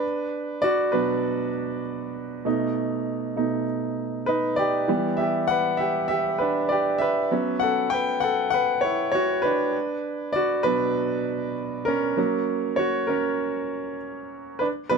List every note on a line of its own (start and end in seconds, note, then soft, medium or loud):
0.00 0.60 D4 medium
0.00 0.66 B4 medium
0.62 0.92 F#4 medium
0.62 0.94 D5 medium
0.92 1.80 B2 medium
0.92 1.81 F#3 soft
0.92 1.51 D4 medium
0.92 1.50 B4 medium
2.45 3.35 B2 soft
2.45 3.35 A3 soft
2.45 3.36 D#4 medium
3.36 3.64 B2 soft
3.36 3.64 A3 soft
3.36 3.64 D#4 soft
4.26 4.56 D#4 medium
4.26 4.58 B4 medium
4.56 5.15 G4 medium
4.56 5.20 D5 medium
4.88 7.27 E3 soft
4.88 7.27 G3 soft
4.88 7.28 B3 medium
5.17 5.48 G4 medium
5.17 5.49 E5 medium
5.48 5.78 B4 medium
5.48 5.77 F#5 medium
5.77 6.08 G4 medium
5.77 6.06 E5 medium
6.08 6.39 G4 medium
6.08 6.40 E5 medium
6.38 6.69 D4 medium
6.38 6.68 B4 medium
6.69 7.00 G4 medium
6.69 7.01 D5 medium
6.98 7.58 B4 medium
6.98 7.62 E5 medium
7.31 9.70 F#3 soft
7.31 9.71 B3 soft
7.31 9.71 C#4 medium
7.60 7.91 A4 medium
7.60 7.92 F#5 medium
7.90 8.00 B4 medium
7.90 7.97 G5 medium
8.20 8.52 A4 medium
8.20 8.49 F#5 medium
8.50 8.82 B4 medium
8.50 8.83 F#5 medium
8.81 9.12 E4 medium
8.81 9.10 C#5 medium
9.12 9.43 F#4 medium
9.12 9.41 C#5 medium
9.42 10.32 D4 medium
9.42 10.37 B4 medium
10.33 10.64 F#4 medium
10.33 10.65 D5 medium
10.63 11.53 B2 soft
10.63 11.53 F#3 soft
10.63 11.84 D4 medium
10.63 11.90 B4 loud
11.85 12.17 C#4 medium
11.85 12.80 A#4 medium
12.17 14.56 F#3 medium
12.17 14.56 A#3 soft
12.17 13.08 C#4 medium
12.76 13.07 F#4 medium
12.76 13.09 C#5 medium
13.07 13.96 C#4 medium
13.07 13.95 A#4 medium
14.59 14.68 D4 medium
14.59 14.66 B4 medium
14.89 14.98 B2 medium
14.89 14.98 F#3 soft
14.89 14.98 D4 medium
14.89 14.98 B4 medium